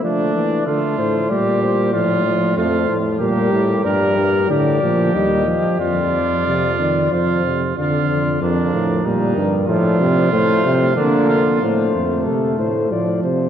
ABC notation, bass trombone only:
X:1
M:3/4
L:1/8
Q:1/4=93
K:Fmix
V:1 name="Bass trombone" clef=bass
F, =E, D, A,, B,,2 | A,,2 F,, A,, B,, A,, | G,, G,, A,, B,, E,, z | F,,4 F,,2 |
F,,2 F,, A,, B,, G,, | A,, C, A,, C, D,2 | A,, F,, C, A,, A,, C, |]